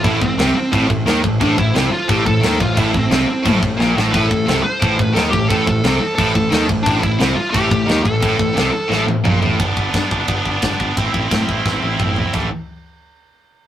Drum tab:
CC |x-x-x-x-|x-x-x-x-|x-x-x---|x-x-x-x-|
RD |--------|--------|--------|--------|
SD |--o---o-|--o---o-|--o---oo|--o---o-|
T1 |--------|--------|--------|--------|
T2 |--------|--------|--------|--------|
FT |--------|--------|--------|--------|
BD |oo--oo-o|oo--oo-o|oo--oo--|oo--oo-o|

CC |x-x-x-x-|x-x-x-x-|x-x-----|--------|
RD |--------|--------|--------|b-b-b-b-|
SD |--o---o-|--o---o-|--o-o---|--o---o-|
T1 |--------|--------|-----o--|--------|
T2 |--------|--------|------o-|--------|
FT |--------|--------|-------o|--------|
BD |oo--oo-o|oo--oo-o|oo------|oooooooo|

CC |--------|x-------|
RD |b-b-----|--------|
SD |--o-o---|--------|
T1 |-----o--|--------|
T2 |------o-|--------|
FT |-------o|o-------|
BD |ooooo-o-|o-------|